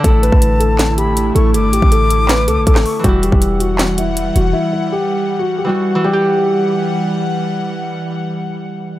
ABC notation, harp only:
X:1
M:4/4
L:1/8
Q:1/4=160
K:Em
V:1 name="Harp" clef=bass
[D,A,E]8- | [D,A,E]8 | [E,G,E]8- | [E,G,E]6 [E,G,F]2 |
[E,G,G]8- | [E,G,G]8 |]